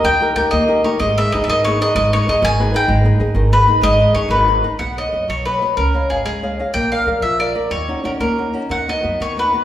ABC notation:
X:1
M:6/8
L:1/16
Q:3/8=124
K:G#m
V:1 name="Mandolin"
=g4 g2 d4 c2 | d2 e2 d3/2 e/2 d2 c2 d2 | d2 c2 d2 g4 =g2 | z8 B4 |
d4 c2 B4- B/2 z3/2 | [K:B] f2 d4 c2 B4 | A4 G2 G4- G/2 z3/2 | =g2 ^e4 =e2 =d4 |
c4 A2 A4- A/2 z3/2 | f2 d4 c2 B4 |]
V:2 name="Nylon-string guitar"
[D,D=GA]2 [DGA]2 [DGA]2 A,2 [DGA]2 [DGA]2 | G,2 [DGB]2 [DGB]2 D,2 [DGB]2 [DGB]2 | G,2 [DGB]2 [DGB]2 D,2 [DGB]2 [DGB]2 | G,2 [DGB]2 [DGB]2 D,2 [DGB]2 [DGB]2 |
G,2 [DGB]2 [DGB]2 D,2 [DGB]2 [DGB]2 | [K:B] B,2 [Bcd]2 [Bcd]2 F,2 [Bcd]2 [Bcd]2 | C2 [cd^e]2 [cde]2 G,2 [cde]2 [cde]2 | A,2 [A=d^e]2 [Ade]2 ^E,2 [Ade]2 [Ade]2 |
D,2 [CDF]2 [CDF]2 A,2 [CDF]2 [CDF]2 | D,2 [B,DF]2 [B,DF]2 D,2 [B,DF]2 [B,DF]2 |]
V:3 name="Upright bass" clef=bass
D,,4 D,,2 D,,6 | G,,,4 G,,,2 G,,,6 | G,,,4 G,,,2 G,,,6 | G,,,4 G,,,2 G,,,6 |
G,,,4 G,,,2 G,,,6 | [K:B] B,,,4 F,,2 B,,,6 | C,,4 G,,,2 C,,6 | A,,,4 ^E,,2 A,,,6 |
D,,4 A,,,2 D,,6 | D,,4 F,,2 D,,6 |]